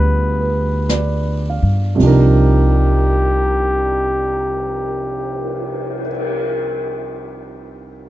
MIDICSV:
0, 0, Header, 1, 6, 480
1, 0, Start_track
1, 0, Key_signature, -3, "minor"
1, 0, Tempo, 1039861
1, 406, Tempo, 1111111
1, 886, Time_signature, 4, 2, 24, 8
1, 886, Tempo, 1140684
1, 3453, End_track
2, 0, Start_track
2, 0, Title_t, "Muted trumpet"
2, 0, Program_c, 0, 59
2, 0, Note_on_c, 0, 71, 92
2, 711, Note_off_c, 0, 71, 0
2, 901, Note_on_c, 0, 67, 71
2, 2587, Note_off_c, 0, 67, 0
2, 3453, End_track
3, 0, Start_track
3, 0, Title_t, "Grand piano"
3, 0, Program_c, 1, 0
3, 0, Control_c, 1, 64, 127
3, 0, Note_on_c, 1, 55, 51
3, 0, Note_on_c, 1, 59, 45
3, 0, Note_on_c, 1, 62, 31
3, 0, Note_on_c, 1, 65, 49
3, 0, Note_on_c, 1, 67, 34
3, 0, Note_on_c, 1, 68, 51
3, 188, Note_on_c, 1, 71, 31
3, 412, Note_on_c, 1, 74, 40
3, 519, Note_off_c, 1, 71, 0
3, 672, Note_on_c, 1, 77, 41
3, 790, Note_off_c, 1, 74, 0
3, 869, Note_on_c, 1, 36, 49
3, 874, Note_off_c, 1, 55, 0
3, 881, Note_on_c, 1, 48, 50
3, 883, Note_off_c, 1, 59, 0
3, 886, Note_off_c, 1, 62, 0
3, 891, Note_off_c, 1, 65, 0
3, 891, Control_c, 1, 64, 0
3, 892, Note_on_c, 1, 53, 42
3, 893, Note_off_c, 1, 67, 0
3, 898, Note_off_c, 1, 68, 0
3, 901, Note_on_c, 1, 62, 49
3, 909, Note_on_c, 1, 63, 50
3, 919, Note_on_c, 1, 70, 59
3, 961, Control_c, 1, 64, 127
3, 1006, Note_off_c, 1, 77, 0
3, 2573, Note_off_c, 1, 36, 0
3, 2584, Note_off_c, 1, 48, 0
3, 2595, Note_off_c, 1, 53, 0
3, 2605, Note_off_c, 1, 62, 0
3, 2613, Note_off_c, 1, 63, 0
3, 2622, Note_off_c, 1, 70, 0
3, 3453, End_track
4, 0, Start_track
4, 0, Title_t, "Upright bass"
4, 0, Program_c, 2, 32
4, 0, Note_on_c, 2, 38, 80
4, 707, Note_off_c, 2, 38, 0
4, 728, Note_on_c, 2, 43, 57
4, 877, Note_off_c, 2, 43, 0
4, 891, Note_on_c, 2, 36, 66
4, 2577, Note_off_c, 2, 36, 0
4, 3453, End_track
5, 0, Start_track
5, 0, Title_t, "Cymbal swell"
5, 1215, Note_on_c, 9, 59, 34
5, 2714, Note_off_c, 9, 59, 0
5, 3453, End_track
6, 0, Start_track
6, 0, Title_t, "Drums"
6, 412, Note_on_c, 9, 38, 44
6, 412, Note_on_c, 9, 44, 50
6, 455, Note_off_c, 9, 38, 0
6, 455, Note_off_c, 9, 44, 0
6, 889, Note_on_c, 9, 36, 45
6, 889, Note_on_c, 9, 51, 50
6, 931, Note_off_c, 9, 36, 0
6, 931, Note_off_c, 9, 51, 0
6, 3453, End_track
0, 0, End_of_file